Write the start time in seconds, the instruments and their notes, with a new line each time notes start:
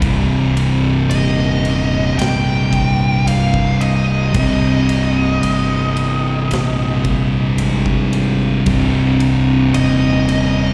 0.00 fingered electric bass C1, distorted electric guitar C2 G2 C3, kick, ride
0.57 ride
1.10 fingered electric bass D#1, lead electric guitar D#5, ride
1.65 ride
2.18 fingered electric bass A#1, lead electric guitar G5, snare, ride
2.73 kick, ride
3.26 fingered electric bass C1, lead electric guitar F5, ride
3.54 kick
3.81 lead electric guitar D#5, ride
4.33 fingered electric bass C1, distorted electric guitar C2 G2 C3, kick, ride
4.89 ride
5.43 fingered electric bass G1, ride
5.97 ride
6.51 fingered electric bass A#1, snare, ride
7.05 kick, ride
7.58 fingered electric bass G#1, ride
7.86 kick
8.13 ride
8.65 fingered electric bass C1, distorted electric guitar C2 G2 C3, kick, ride
9.20 ride
9.74 fingered electric bass D#1, lead electric guitar D#5, ride
10.29 ride